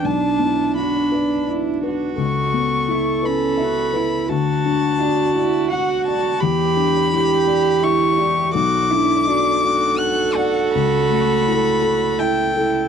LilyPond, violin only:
\new Staff \with { instrumentName = "Violin" } { \time 3/4 \key b \minor \tempo 4 = 84 a''4 b''4 r4 | cis'''4. b''4. | a''2 fis''8 a''8 | b''2 cis'''4 |
d'''2 fis'''8 fis''8 | b''2 g''4 | }